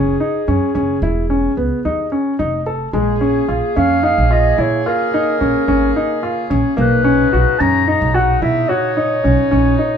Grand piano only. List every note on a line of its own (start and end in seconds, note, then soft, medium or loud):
0.00 0.14 C#4 medium
0.20 0.41 D#4 medium
0.48 0.69 C#4 medium
0.75 0.96 C#4 medium
1.03 1.24 E4 medium
1.30 1.51 C#4 medium
1.57 1.78 B3 medium
1.85 2.06 D#4 medium
2.12 2.33 C#4 medium
2.39 2.60 D#4 medium
2.66 2.88 A4 medium
2.93 3.15 G#3 medium
3.21 3.42 C#4 medium
3.48 3.70 F4 medium
3.76 3.97 C#4 medium
4.03 4.24 D#4 medium
4.31 4.52 F4 medium
4.58 4.79 E4 medium
4.86 5.07 F4 medium
5.14 5.35 D#4 medium
5.41 5.62 C#4 medium
5.68 5.89 C#4 medium
5.96 6.17 D#4 medium
6.23 6.44 F4 medium
6.50 6.71 C#4 medium
6.77 6.98 A#3 medium
7.04 7.26 C#4 medium
7.33 7.54 F#4 medium
7.60 7.81 C#4 medium
7.88 8.09 D#4 medium
8.14 8.36 F#4 medium
8.42 8.63 E4 medium
8.69 8.90 F#4 medium
8.97 9.18 D#4 medium
9.24 9.45 C#4 medium
9.51 9.73 C#4 medium
9.79 9.97 D#4 medium